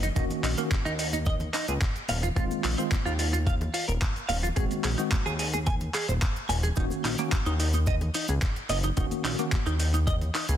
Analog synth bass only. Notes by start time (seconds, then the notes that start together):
Already playing: F#1
0.16 D#1
0.43 A#1
0.85 D#2
1.68 C#2
2.09 D#1
2.36 D#1
2.64 A#1
3.06 D#2
3.89 D#1
4.29 D#1
4.57 D#1
4.84 A#1
5.26 D#2
6.09 D#1
6.49 D#1
6.77 D#1
7.04 A#1
7.46 D#2
8.29 C#2
8.69 F#1
8.97 D#1
9.24 A#1
9.66 D#2
10.49 C#2